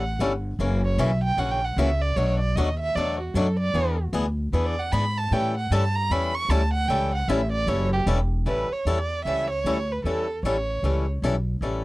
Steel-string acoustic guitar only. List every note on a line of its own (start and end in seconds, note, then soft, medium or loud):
0.20 0.31 E3 medium
0.20 0.32 G3 loud
0.20 0.32 C#4 medium
0.20 0.32 E4 medium
0.20 0.32 A4 medium
0.60 0.81 C#3 medium
0.60 0.81 E3 medium
0.60 0.81 A#3 medium
0.60 0.81 C#4 medium
0.60 0.81 F#4 medium
0.98 1.10 C#3 medium
0.98 1.10 E3 loud
0.98 1.10 A#3 medium
0.98 1.10 C#4 loud
0.98 1.10 F#4 medium
1.38 1.59 C#3 medium
1.38 1.59 E3 medium
1.38 1.59 A#3 medium
1.38 1.60 C#4 medium
1.38 1.60 F#4 medium
1.78 1.89 C#3 medium
1.78 1.89 E3 medium
1.78 1.89 A#3 medium
1.78 1.90 C#4 loud
1.78 1.90 F#4 medium
2.17 2.38 B2 medium
2.17 2.38 F#3 medium
2.17 2.38 A3 medium
2.17 2.39 D4 medium
2.17 2.39 F#4 medium
2.57 2.68 B2 medium
2.57 2.68 F#3 medium
2.57 2.68 A3 medium
2.57 2.68 D4 loud
2.57 2.68 F#4 loud
2.97 3.18 B2 medium
2.97 3.18 F#3 medium
2.97 3.18 A3 medium
2.97 3.18 D4 medium
2.97 3.18 F#4 medium
3.35 3.46 B2 medium
3.35 3.47 F#3 loud
3.35 3.47 A3 medium
3.35 3.47 D4 medium
3.35 3.47 F#4 loud
3.74 3.95 E3 medium
3.74 3.96 B3 medium
3.74 3.96 D4 medium
3.74 3.96 G#4 medium
4.13 4.25 E3 medium
4.13 4.25 B3 medium
4.13 4.25 D4 medium
4.13 4.25 G#4 loud
4.53 4.74 E3 medium
4.53 4.75 B3 medium
4.53 4.75 D4 medium
4.53 4.75 G#4 medium
4.92 5.04 E3 medium
4.92 5.04 B3 loud
4.92 5.04 D4 loud
4.92 5.04 G#4 medium
5.32 5.53 E3 medium
5.32 5.53 G3 medium
5.32 5.54 C#4 medium
5.32 5.54 E4 medium
5.32 5.54 A4 medium
5.72 5.83 E3 loud
5.72 5.83 G3 loud
5.72 5.83 C#4 loud
5.72 5.83 E4 loud
5.72 5.83 A4 loud
6.11 6.32 E3 medium
6.11 6.32 G3 medium
6.11 6.32 C#4 medium
6.11 6.32 E4 medium
6.11 6.33 A4 medium
6.50 6.61 E3 medium
6.50 6.61 G3 loud
6.50 6.61 C#4 loud
6.50 6.62 E4 loud
6.50 6.62 A4 loud
6.89 7.10 E3 medium
6.89 7.11 G3 medium
6.89 7.11 C#4 medium
6.89 7.11 E4 medium
6.89 7.11 A4 medium
7.29 7.40 E3 medium
7.29 7.40 G3 loud
7.29 7.40 C#4 loud
7.29 7.40 E4 loud
7.29 7.40 A4 loud
7.67 7.89 E3 medium
7.67 7.89 G3 medium
7.67 7.89 C#4 medium
7.67 7.89 E4 medium
7.67 7.89 A4 medium
8.07 8.18 E3 medium
8.07 8.18 G3 medium
8.07 8.19 C#4 loud
8.07 8.19 E4 medium
8.07 8.19 A4 loud
8.46 8.68 E3 medium
8.46 8.68 G3 medium
8.46 8.68 C#4 medium
8.46 8.68 E4 medium
8.46 8.68 A4 medium
8.87 8.98 E3 medium
8.87 8.98 G3 medium
8.87 8.98 C#4 medium
8.87 8.98 E4 medium
8.87 8.98 A4 loud
9.26 9.47 E3 medium
9.26 9.47 G3 medium
9.26 9.48 C#4 medium
9.26 9.48 E4 medium
9.26 9.48 A4 medium
9.66 9.77 E3 medium
9.66 9.77 G3 medium
9.66 9.77 C#4 medium
9.66 9.77 E4 medium
9.66 9.77 A4 medium
10.05 10.26 E3 medium
10.05 10.26 G3 medium
10.05 10.26 C#4 medium
10.05 10.27 E4 medium
10.05 10.27 A4 medium
10.45 10.56 E3 medium
10.45 10.56 G3 medium
10.45 10.56 C#4 medium
10.45 10.56 E4 medium
10.45 10.56 A4 medium
10.84 11.05 E3 medium
10.84 11.05 G3 medium
10.84 11.05 C#4 medium
10.84 11.05 E4 medium
10.84 11.05 A4 medium
11.23 11.34 E3 medium
11.23 11.34 G3 medium
11.23 11.35 C#4 medium
11.23 11.35 E4 medium
11.23 11.35 A4 loud
11.62 11.83 E3 medium
11.62 11.84 G3 medium
11.62 11.84 C#4 medium
11.62 11.84 E4 medium
11.62 11.84 A4 medium